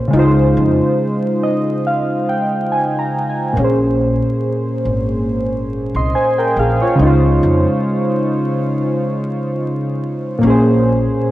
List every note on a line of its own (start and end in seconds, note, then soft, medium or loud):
0.00 0.11 G#4 medium
0.00 0.13 C5 medium
0.08 3.50 C#3 medium
0.08 3.51 G#3 medium
0.13 0.52 C#2 loud
0.13 3.52 D#4 medium
0.13 3.54 F4 medium
0.19 3.55 C5 medium
0.57 0.78 F2 medium
1.43 1.83 D#5 medium
1.87 2.26 F5 medium
2.29 2.68 G5 medium
2.72 2.98 G#5 medium
2.99 3.26 A#5 medium
3.29 3.55 G#5 medium
3.53 4.19 A#1 loud
3.53 5.65 A#2 medium
3.53 5.66 A#3 medium
3.58 5.68 C#4 medium
3.58 5.69 G#4 medium
3.64 5.71 C5 medium
4.85 5.91 G#1 medium
5.95 6.12 C2 medium
5.95 6.14 D#5 medium
5.95 6.14 C6 medium
6.15 6.37 C5 medium
6.15 6.37 G#5 medium
6.38 6.56 A#4 medium
6.38 6.56 G5 medium
6.57 6.78 A#1 medium
6.57 6.81 G#4 medium
6.57 6.80 F5 medium
6.82 7.03 F4 medium
6.82 7.22 C#5 medium
6.95 7.38 C#2 loud
6.95 10.36 C#3 medium
6.95 10.38 G#3 medium
7.01 10.39 D#4 medium
7.01 10.41 F4 medium
7.07 10.42 C5 medium
7.43 7.64 F2 loud
10.38 11.31 A#2 medium
10.38 11.31 A#3 medium
10.43 11.05 A#1 medium
10.43 11.31 C#4 medium
10.43 11.31 G#4 medium
10.50 11.31 C5 medium